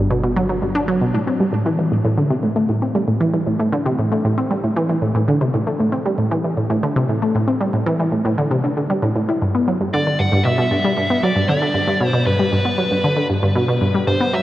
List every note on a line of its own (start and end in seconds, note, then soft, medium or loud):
0.00 1.12 G1 medium
0.11 0.22 B2 loud
0.24 0.31 B2 medium
0.36 0.44 F#3 loud
0.49 0.57 F#3 medium
0.62 0.70 G2 medium
0.75 0.80 D4 loud
0.88 1.00 F#3 loud
1.01 1.06 B2 medium
1.14 1.26 A2 medium
1.27 1.39 C4 medium
1.40 1.45 G3 medium
1.53 1.58 A2 medium
1.66 1.77 E3 loud
1.79 1.87 E3 medium
1.92 2.00 A2 medium
2.05 2.12 A2 loud
2.18 2.29 D3 loud
2.30 2.38 C3 loud
2.43 2.55 A2 medium
2.56 2.64 A3 medium
2.69 2.81 A2 medium
2.82 2.94 C4 medium
2.95 3.00 G3 medium
3.08 3.13 A2 medium
3.20 3.32 E3 loud
3.34 3.42 E3 medium
3.47 3.55 A2 medium
3.60 3.67 A2 loud
3.73 3.84 D3 loud
3.86 3.93 C3 loud
3.99 4.10 A2 medium
4.12 4.19 A3 medium
4.25 4.36 A2 medium
4.37 4.49 C4 medium
4.50 4.55 G3 medium
4.64 4.68 A2 medium
4.76 4.88 E3 medium
4.89 4.97 E3 medium
5.02 5.10 A2 medium
5.15 5.23 A2 medium
5.28 5.40 D3 loud
5.41 5.49 C3 medium
5.54 5.65 A2 medium
5.67 5.75 A3 medium
5.80 5.91 A2 medium
5.92 6.04 C4 medium
6.06 6.10 G3 medium
6.18 6.23 A2 medium
6.31 6.43 E3 medium
6.44 6.52 E3 medium
6.57 6.65 A2 medium
6.70 6.78 A2 loud
6.83 6.95 D3 medium
6.96 7.04 C3 loud
7.09 7.21 A2 medium
7.22 7.30 A3 medium
7.35 7.47 A2 medium
7.48 7.59 C4 medium
7.61 7.65 G3 medium
7.73 7.78 A2 medium
7.86 7.98 E3 loud
7.99 8.07 E3 medium
8.12 8.20 A2 medium
8.25 8.33 A2 loud
8.38 8.50 D3 loud
8.51 8.59 C3 loud
8.64 8.72 D3 medium
8.77 8.82 D3 medium
8.90 8.98 G3 medium
9.03 9.11 A2 loud
9.16 9.27 A2 medium
9.29 9.40 E4 medium
9.42 9.53 G2 medium
9.55 9.66 B3 medium
9.68 9.72 F#3 medium
9.81 9.85 G2 medium
9.93 10.05 D3 loud
9.93 10.20 D5 medium
10.07 10.14 D3 medium
10.19 10.27 G2 medium
10.19 10.44 F#5 loud
10.32 10.40 G2 loud
10.45 10.57 B2 loud
10.45 11.25 E5 loud
10.58 10.66 B2 medium
10.71 10.83 G2 medium
10.84 10.92 G3 medium
10.97 11.09 G2 medium
11.10 11.22 B3 medium
11.23 11.28 F#3 medium
11.23 11.48 D5 medium
11.36 11.41 G2 medium
11.49 11.60 D3 loud
11.49 12.07 D5 loud
11.62 11.69 D3 medium
11.74 11.82 G2 medium
11.88 11.95 G2 loud
12.01 12.12 B2 loud
12.07 12.26 C5 loud
12.14 12.21 B2 loud
12.27 12.38 G2 medium
12.27 13.26 B4 medium
12.40 12.47 G3 medium
12.53 12.64 G2 medium
12.65 12.77 B3 medium
12.78 12.83 F#3 medium
12.91 12.96 G2 medium
13.04 13.15 D3 medium
13.17 13.24 D3 medium
13.30 13.37 G2 medium
13.43 13.50 G2 medium
13.55 13.67 B2 loud
13.68 13.76 B2 loud
13.81 13.93 G2 medium
13.94 14.02 G3 medium
14.07 14.19 G2 medium
14.07 14.34 C5 loud
14.20 14.32 B3 medium
14.33 14.38 F#3 medium
14.33 14.43 E5 loud